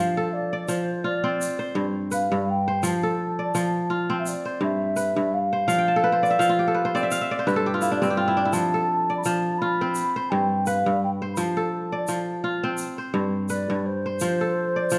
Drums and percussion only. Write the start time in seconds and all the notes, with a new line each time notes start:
0.69 shaker
1.41 shaker
2.12 shaker
2.83 shaker
3.55 shaker
4.26 shaker
4.97 shaker
5.69 shaker
6.25 shaker
6.41 shaker
6.96 shaker
7.11 shaker
7.48 shaker
7.82 shaker
8.03 shaker
8.53 shaker
9.24 shaker
9.95 shaker
10.66 shaker
11.37 shaker
12.08 shaker
12.78 shaker
13.49 shaker
14.20 shaker
14.90 shaker